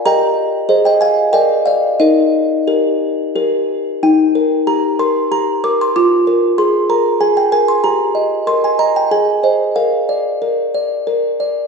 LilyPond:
\new Staff \with { instrumentName = "Music box" } { \time 3/4 \key ees \major \tempo 4 = 93 << { <g'' bes''>4~ <g'' bes''>16 <ees'' g''>16 <f'' aes''>8 <ees'' g''>8 <d'' f''>8 | <bes' ees''>2 r4 | g''4 bes''8 c'''8 bes''8 d'''16 c'''16 | d'''4 c'''8 bes''8 aes''16 g''16 aes''16 c'''16 |
bes''4 c'''16 aes''16 bes''16 g''16 aes''4 | f''2 r4 | } \\ { <g' bes' ees''>4 <aes' c'' ees''>4 <bes' d''>4 | ees'4 <g' bes'>4 <g' bes'>4 | ees'8 bes'8 g'8 bes'8 g'8 bes'8 | f'8 bes'8 aes'8 bes'8 aes'8 bes'8 |
g'8 ees''8 bes'8 ees''8 aes'8 <c'' ees''>8 | bes'8 d''8 bes'8 d''8 bes'8 d''8 | } >> }